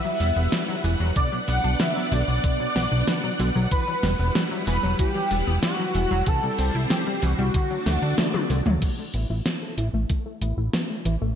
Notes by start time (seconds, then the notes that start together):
Already playing: G3 E4 B4 E5 F#5
0.05 E3 F#3, shaker
0.20 E1 G3 B3, open hi-hat, shaker
0.36 E1 E3 B3, shaker
0.52 G3, snare, closed hi-hat, shaker
0.68 E3 F#3, shaker
0.84 E1 E3 B3, open hi-hat, shaker
1.00 E1 E3 F#3, shaker
1.16 B2 D3 B3 D4 D5, kick, closed hi-hat, shaker
1.32 B2 F#3, shaker
1.48 B1 F#3 B3 F#5, open hi-hat, shaker
1.64 B1 F#3 D4, shaker
1.80 D3 B3 E5, snare, closed hi-hat, shaker
1.96 F#3 B3, shaker
2.12 B1 D3 F#3 D5, open hi-hat, shaker
2.28 B1 B2 F#3, shaker
2.44 B2 D3, kick, closed hi-hat, shaker
2.60 B2 F#3, shaker
2.76 B1 F#3 B3, snare, open hi-hat, shaker
2.92 B1 B2 D4, shaker
3.08 D3 B3, snare, closed hi-hat, shaker
3.23 B2 F#3, shaker
3.39 B1 D3 F#3, open hi-hat, shaker
3.55 B1 B2 F#3, shaker
3.71 E3 G3 E4 B4, kick, closed hi-hat, shaker
3.87 E3 F#3, shaker
4.03 E1 G3 B3, snare, open hi-hat, shaker
4.19 E1 B3, shaker
4.35 G3, snare, closed hi-hat, shaker
4.51 F#3 E4, shaker
4.67 E1 E3 B3 B4, open hi-hat, shaker
4.83 E1 E3 F#3, shaker
4.99 E3 G4, kick, closed hi-hat, shaker
5.15 E3 F#3, shaker
5.31 E1 G3 B3, open hi-hat, shaker
5.47 E1 E3 B3, shaker
5.63 G3 F#4, snare, closed hi-hat, shaker
5.79 E3 F#3, shaker
5.95 E1 E3 B3, open hi-hat, shaker
6.11 E1 E3 F#3, shaker
6.26 C3 E3 G3 C4 A4 C5, kick, closed hi-hat, shaker
6.43 C3 G3, shaker
6.59 C2 G3 C4, open hi-hat, shaker
6.75 C2 G3 E4, shaker
6.90 E3 C4 G4, snare, closed hi-hat, shaker
7.06 G3 C4, shaker
7.22 C2 E3 G3 F#4, open hi-hat, shaker
7.38 C2 C3 G3, shaker
7.54 D3 A3 D4 F#4 D5, kick, closed hi-hat, shaker
7.70 D3 F#3, shaker
7.86 D2 F#3 A3, snare, open hi-hat, shaker
8.02 D2 D4, shaker
8.18 D3 A3, snare, closed hi-hat, high tom, shaker
8.34 D3 F#3, high tom, shaker
8.50 C2 D3 A3, open hi-hat, shaker
8.66 D2 F#3 A3, mid tom, shaker
8.82 E3 A3, kick, closed hi-hat, crash
8.98 A3
9.14 A1 B3 E4, closed hi-hat
9.30 A1 E4
9.46 B3, snare, closed hi-hat
9.62 A3 A4
9.78 A1 E3 E4, closed hi-hat
9.93 A1 A3
10.10 E3 A3, kick, closed hi-hat
10.26 A3
10.41 A1 B3 E4, closed hi-hat
10.57 A1 A3 E4
10.73 B3, snare, closed hi-hat
10.90 A3
11.05 A1 E3 E4, closed hi-hat
11.21 A1 A3